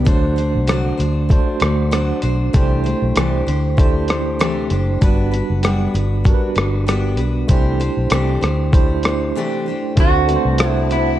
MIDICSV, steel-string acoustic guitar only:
0, 0, Header, 1, 2, 480
1, 0, Start_track
1, 0, Tempo, 619003
1, 52, Time_signature, 4, 2, 24, 8
1, 8680, End_track
2, 0, Start_track
2, 0, Title_t, "Steel-string acoustic guitar"
2, 0, Program_c, 0, 25
2, 38, Note_on_c, 0, 50, 79
2, 43, Note_on_c, 0, 54, 78
2, 48, Note_on_c, 0, 57, 89
2, 53, Note_on_c, 0, 62, 85
2, 54, Note_on_c, 0, 66, 70
2, 58, Note_on_c, 0, 72, 86
2, 269, Note_off_c, 0, 72, 0
2, 278, Note_on_c, 0, 72, 57
2, 280, Note_off_c, 0, 66, 0
2, 285, Note_off_c, 0, 50, 0
2, 287, Note_off_c, 0, 54, 0
2, 289, Note_off_c, 0, 62, 0
2, 289, Note_on_c, 0, 66, 57
2, 290, Note_off_c, 0, 57, 0
2, 298, Note_on_c, 0, 62, 45
2, 308, Note_on_c, 0, 57, 47
2, 519, Note_on_c, 0, 50, 73
2, 520, Note_off_c, 0, 57, 0
2, 524, Note_off_c, 0, 62, 0
2, 525, Note_off_c, 0, 72, 0
2, 527, Note_off_c, 0, 66, 0
2, 528, Note_on_c, 0, 54, 75
2, 529, Note_on_c, 0, 57, 76
2, 533, Note_on_c, 0, 62, 73
2, 536, Note_on_c, 0, 66, 83
2, 540, Note_on_c, 0, 72, 81
2, 746, Note_off_c, 0, 72, 0
2, 755, Note_on_c, 0, 72, 49
2, 758, Note_off_c, 0, 66, 0
2, 766, Note_off_c, 0, 50, 0
2, 768, Note_off_c, 0, 62, 0
2, 768, Note_on_c, 0, 66, 47
2, 770, Note_off_c, 0, 54, 0
2, 770, Note_off_c, 0, 57, 0
2, 778, Note_on_c, 0, 62, 48
2, 787, Note_on_c, 0, 57, 40
2, 989, Note_off_c, 0, 57, 0
2, 998, Note_on_c, 0, 57, 62
2, 1000, Note_off_c, 0, 62, 0
2, 1004, Note_off_c, 0, 72, 0
2, 1009, Note_on_c, 0, 62, 55
2, 1010, Note_off_c, 0, 66, 0
2, 1020, Note_on_c, 0, 66, 58
2, 1028, Note_on_c, 0, 72, 56
2, 1229, Note_off_c, 0, 72, 0
2, 1238, Note_on_c, 0, 72, 50
2, 1241, Note_off_c, 0, 66, 0
2, 1245, Note_off_c, 0, 57, 0
2, 1250, Note_on_c, 0, 66, 45
2, 1251, Note_off_c, 0, 62, 0
2, 1260, Note_on_c, 0, 62, 41
2, 1269, Note_on_c, 0, 57, 44
2, 1482, Note_off_c, 0, 57, 0
2, 1484, Note_on_c, 0, 50, 75
2, 1485, Note_off_c, 0, 72, 0
2, 1487, Note_off_c, 0, 62, 0
2, 1489, Note_off_c, 0, 66, 0
2, 1489, Note_on_c, 0, 54, 72
2, 1491, Note_on_c, 0, 57, 71
2, 1497, Note_on_c, 0, 62, 68
2, 1499, Note_on_c, 0, 66, 82
2, 1502, Note_on_c, 0, 72, 67
2, 1712, Note_off_c, 0, 72, 0
2, 1721, Note_on_c, 0, 72, 56
2, 1722, Note_off_c, 0, 66, 0
2, 1728, Note_off_c, 0, 50, 0
2, 1731, Note_off_c, 0, 54, 0
2, 1731, Note_on_c, 0, 66, 46
2, 1732, Note_off_c, 0, 57, 0
2, 1734, Note_off_c, 0, 62, 0
2, 1743, Note_on_c, 0, 62, 45
2, 1749, Note_on_c, 0, 57, 41
2, 1961, Note_off_c, 0, 57, 0
2, 1963, Note_on_c, 0, 48, 71
2, 1966, Note_off_c, 0, 62, 0
2, 1966, Note_on_c, 0, 52, 76
2, 1967, Note_off_c, 0, 72, 0
2, 1971, Note_on_c, 0, 57, 88
2, 1972, Note_off_c, 0, 66, 0
2, 1975, Note_on_c, 0, 62, 79
2, 1977, Note_on_c, 0, 67, 85
2, 1982, Note_on_c, 0, 72, 79
2, 2190, Note_off_c, 0, 72, 0
2, 2200, Note_on_c, 0, 72, 55
2, 2201, Note_off_c, 0, 67, 0
2, 2208, Note_off_c, 0, 48, 0
2, 2209, Note_off_c, 0, 52, 0
2, 2211, Note_off_c, 0, 57, 0
2, 2211, Note_off_c, 0, 62, 0
2, 2211, Note_on_c, 0, 67, 51
2, 2220, Note_on_c, 0, 62, 49
2, 2230, Note_on_c, 0, 57, 51
2, 2446, Note_off_c, 0, 57, 0
2, 2446, Note_off_c, 0, 72, 0
2, 2447, Note_on_c, 0, 48, 73
2, 2449, Note_off_c, 0, 62, 0
2, 2451, Note_off_c, 0, 67, 0
2, 2451, Note_on_c, 0, 52, 74
2, 2455, Note_on_c, 0, 57, 79
2, 2458, Note_on_c, 0, 62, 78
2, 2462, Note_on_c, 0, 67, 77
2, 2466, Note_on_c, 0, 72, 81
2, 2677, Note_off_c, 0, 72, 0
2, 2686, Note_on_c, 0, 72, 45
2, 2687, Note_off_c, 0, 67, 0
2, 2690, Note_off_c, 0, 48, 0
2, 2692, Note_off_c, 0, 52, 0
2, 2694, Note_off_c, 0, 57, 0
2, 2695, Note_off_c, 0, 62, 0
2, 2696, Note_on_c, 0, 67, 50
2, 2706, Note_on_c, 0, 62, 45
2, 2714, Note_on_c, 0, 57, 35
2, 2912, Note_off_c, 0, 57, 0
2, 2921, Note_off_c, 0, 62, 0
2, 2922, Note_on_c, 0, 57, 57
2, 2929, Note_off_c, 0, 72, 0
2, 2930, Note_off_c, 0, 67, 0
2, 2930, Note_on_c, 0, 62, 64
2, 2939, Note_on_c, 0, 67, 59
2, 2949, Note_on_c, 0, 72, 59
2, 3155, Note_off_c, 0, 72, 0
2, 3164, Note_on_c, 0, 72, 48
2, 3167, Note_off_c, 0, 57, 0
2, 3167, Note_off_c, 0, 67, 0
2, 3171, Note_off_c, 0, 62, 0
2, 3176, Note_on_c, 0, 67, 43
2, 3186, Note_on_c, 0, 62, 46
2, 3195, Note_on_c, 0, 57, 41
2, 3404, Note_off_c, 0, 57, 0
2, 3406, Note_on_c, 0, 48, 74
2, 3407, Note_off_c, 0, 62, 0
2, 3408, Note_off_c, 0, 72, 0
2, 3410, Note_off_c, 0, 67, 0
2, 3410, Note_on_c, 0, 52, 65
2, 3414, Note_on_c, 0, 57, 78
2, 3416, Note_on_c, 0, 62, 80
2, 3419, Note_on_c, 0, 67, 84
2, 3426, Note_on_c, 0, 72, 73
2, 3638, Note_off_c, 0, 72, 0
2, 3647, Note_on_c, 0, 72, 44
2, 3648, Note_off_c, 0, 67, 0
2, 3649, Note_off_c, 0, 48, 0
2, 3651, Note_off_c, 0, 52, 0
2, 3653, Note_off_c, 0, 57, 0
2, 3655, Note_off_c, 0, 62, 0
2, 3657, Note_on_c, 0, 67, 43
2, 3665, Note_on_c, 0, 62, 43
2, 3672, Note_on_c, 0, 57, 36
2, 3887, Note_on_c, 0, 55, 73
2, 3889, Note_off_c, 0, 62, 0
2, 3890, Note_off_c, 0, 72, 0
2, 3892, Note_off_c, 0, 57, 0
2, 3895, Note_off_c, 0, 67, 0
2, 3895, Note_on_c, 0, 59, 76
2, 3898, Note_on_c, 0, 62, 87
2, 3904, Note_on_c, 0, 66, 84
2, 3908, Note_on_c, 0, 71, 78
2, 4110, Note_off_c, 0, 71, 0
2, 4119, Note_on_c, 0, 71, 56
2, 4128, Note_off_c, 0, 66, 0
2, 4130, Note_off_c, 0, 55, 0
2, 4134, Note_off_c, 0, 59, 0
2, 4136, Note_off_c, 0, 62, 0
2, 4137, Note_on_c, 0, 66, 48
2, 4150, Note_on_c, 0, 62, 46
2, 4363, Note_off_c, 0, 62, 0
2, 4365, Note_on_c, 0, 55, 79
2, 4366, Note_off_c, 0, 71, 0
2, 4367, Note_on_c, 0, 59, 69
2, 4368, Note_off_c, 0, 66, 0
2, 4373, Note_on_c, 0, 62, 71
2, 4378, Note_on_c, 0, 66, 81
2, 4383, Note_on_c, 0, 71, 81
2, 4597, Note_off_c, 0, 71, 0
2, 4606, Note_on_c, 0, 71, 52
2, 4609, Note_off_c, 0, 55, 0
2, 4610, Note_off_c, 0, 59, 0
2, 4611, Note_off_c, 0, 66, 0
2, 4613, Note_off_c, 0, 62, 0
2, 4620, Note_on_c, 0, 66, 42
2, 4632, Note_on_c, 0, 62, 41
2, 4841, Note_on_c, 0, 59, 62
2, 4843, Note_off_c, 0, 62, 0
2, 4850, Note_off_c, 0, 71, 0
2, 4852, Note_off_c, 0, 66, 0
2, 4852, Note_on_c, 0, 62, 54
2, 4861, Note_on_c, 0, 66, 58
2, 4869, Note_on_c, 0, 71, 57
2, 5068, Note_off_c, 0, 71, 0
2, 5077, Note_on_c, 0, 71, 52
2, 5086, Note_off_c, 0, 66, 0
2, 5087, Note_off_c, 0, 59, 0
2, 5093, Note_off_c, 0, 62, 0
2, 5095, Note_on_c, 0, 66, 43
2, 5107, Note_on_c, 0, 62, 43
2, 5323, Note_on_c, 0, 55, 68
2, 5325, Note_off_c, 0, 71, 0
2, 5327, Note_off_c, 0, 62, 0
2, 5332, Note_off_c, 0, 66, 0
2, 5334, Note_on_c, 0, 59, 82
2, 5336, Note_on_c, 0, 62, 80
2, 5341, Note_on_c, 0, 66, 67
2, 5345, Note_on_c, 0, 71, 78
2, 5552, Note_off_c, 0, 71, 0
2, 5562, Note_on_c, 0, 71, 46
2, 5568, Note_off_c, 0, 55, 0
2, 5569, Note_off_c, 0, 66, 0
2, 5574, Note_off_c, 0, 59, 0
2, 5575, Note_off_c, 0, 62, 0
2, 5578, Note_on_c, 0, 66, 44
2, 5591, Note_on_c, 0, 62, 42
2, 5802, Note_on_c, 0, 48, 72
2, 5803, Note_off_c, 0, 62, 0
2, 5804, Note_on_c, 0, 52, 72
2, 5808, Note_off_c, 0, 71, 0
2, 5810, Note_on_c, 0, 57, 88
2, 5812, Note_on_c, 0, 62, 79
2, 5815, Note_off_c, 0, 66, 0
2, 5818, Note_on_c, 0, 67, 88
2, 5820, Note_on_c, 0, 72, 82
2, 6036, Note_off_c, 0, 72, 0
2, 6045, Note_on_c, 0, 72, 59
2, 6047, Note_off_c, 0, 67, 0
2, 6048, Note_off_c, 0, 48, 0
2, 6049, Note_off_c, 0, 52, 0
2, 6052, Note_off_c, 0, 57, 0
2, 6053, Note_off_c, 0, 62, 0
2, 6057, Note_on_c, 0, 67, 54
2, 6064, Note_on_c, 0, 62, 49
2, 6073, Note_on_c, 0, 57, 47
2, 6286, Note_on_c, 0, 48, 68
2, 6288, Note_off_c, 0, 57, 0
2, 6290, Note_off_c, 0, 72, 0
2, 6292, Note_off_c, 0, 62, 0
2, 6293, Note_on_c, 0, 52, 68
2, 6295, Note_off_c, 0, 67, 0
2, 6297, Note_on_c, 0, 57, 75
2, 6301, Note_on_c, 0, 62, 70
2, 6304, Note_on_c, 0, 67, 86
2, 6307, Note_on_c, 0, 72, 79
2, 6513, Note_off_c, 0, 72, 0
2, 6522, Note_on_c, 0, 72, 46
2, 6526, Note_off_c, 0, 67, 0
2, 6530, Note_off_c, 0, 48, 0
2, 6533, Note_off_c, 0, 52, 0
2, 6535, Note_off_c, 0, 57, 0
2, 6535, Note_on_c, 0, 67, 42
2, 6538, Note_off_c, 0, 62, 0
2, 6546, Note_on_c, 0, 62, 39
2, 6552, Note_on_c, 0, 57, 45
2, 6756, Note_off_c, 0, 57, 0
2, 6765, Note_on_c, 0, 57, 52
2, 6768, Note_off_c, 0, 72, 0
2, 6770, Note_off_c, 0, 62, 0
2, 6775, Note_off_c, 0, 67, 0
2, 6779, Note_on_c, 0, 62, 55
2, 6786, Note_on_c, 0, 67, 58
2, 6795, Note_on_c, 0, 72, 65
2, 7001, Note_off_c, 0, 72, 0
2, 7010, Note_off_c, 0, 57, 0
2, 7010, Note_on_c, 0, 72, 52
2, 7013, Note_off_c, 0, 67, 0
2, 7016, Note_off_c, 0, 62, 0
2, 7023, Note_on_c, 0, 67, 44
2, 7032, Note_on_c, 0, 62, 47
2, 7040, Note_on_c, 0, 57, 44
2, 7252, Note_off_c, 0, 72, 0
2, 7254, Note_on_c, 0, 48, 73
2, 7257, Note_off_c, 0, 57, 0
2, 7258, Note_off_c, 0, 67, 0
2, 7260, Note_off_c, 0, 62, 0
2, 7260, Note_on_c, 0, 52, 81
2, 7267, Note_on_c, 0, 57, 85
2, 7270, Note_on_c, 0, 62, 70
2, 7272, Note_on_c, 0, 67, 82
2, 7274, Note_on_c, 0, 72, 78
2, 7482, Note_off_c, 0, 72, 0
2, 7492, Note_on_c, 0, 72, 49
2, 7494, Note_off_c, 0, 48, 0
2, 7495, Note_off_c, 0, 67, 0
2, 7497, Note_off_c, 0, 52, 0
2, 7500, Note_off_c, 0, 57, 0
2, 7502, Note_off_c, 0, 62, 0
2, 7504, Note_on_c, 0, 67, 44
2, 7516, Note_on_c, 0, 62, 45
2, 7523, Note_on_c, 0, 57, 36
2, 7733, Note_off_c, 0, 72, 0
2, 7734, Note_off_c, 0, 57, 0
2, 7735, Note_on_c, 0, 50, 65
2, 7739, Note_off_c, 0, 67, 0
2, 7743, Note_on_c, 0, 57, 69
2, 7745, Note_off_c, 0, 62, 0
2, 7752, Note_on_c, 0, 60, 76
2, 7754, Note_on_c, 0, 66, 85
2, 7962, Note_off_c, 0, 66, 0
2, 7971, Note_on_c, 0, 66, 50
2, 7975, Note_off_c, 0, 50, 0
2, 7978, Note_off_c, 0, 60, 0
2, 7979, Note_off_c, 0, 57, 0
2, 7987, Note_on_c, 0, 60, 52
2, 7999, Note_on_c, 0, 57, 45
2, 8212, Note_off_c, 0, 66, 0
2, 8213, Note_on_c, 0, 50, 52
2, 8216, Note_off_c, 0, 57, 0
2, 8221, Note_off_c, 0, 60, 0
2, 8226, Note_on_c, 0, 57, 53
2, 8236, Note_on_c, 0, 60, 48
2, 8243, Note_on_c, 0, 66, 60
2, 8440, Note_off_c, 0, 66, 0
2, 8449, Note_on_c, 0, 66, 44
2, 8454, Note_off_c, 0, 50, 0
2, 8456, Note_off_c, 0, 60, 0
2, 8460, Note_off_c, 0, 57, 0
2, 8465, Note_on_c, 0, 60, 42
2, 8481, Note_on_c, 0, 57, 41
2, 8680, Note_off_c, 0, 57, 0
2, 8680, Note_off_c, 0, 60, 0
2, 8680, Note_off_c, 0, 66, 0
2, 8680, End_track
0, 0, End_of_file